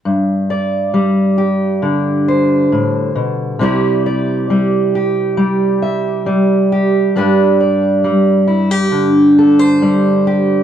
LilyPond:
\new Staff \with { instrumentName = "Steel-string acoustic guitar" } { \time 4/4 \key c \lydian \tempo 4 = 68 << { r8 d''4 g'4 c''4. | <g e' g' d''>8 d''4 g'4 e''4 g'8 | <g d' g' b'>8 d''4 e'16 g'8. a'16 c''8. g'8 | } \\ { g,4 g4 d4 a,8 b,8 | c4 g4 g4 g4 | g,4 g4 d4 g4 | } >> }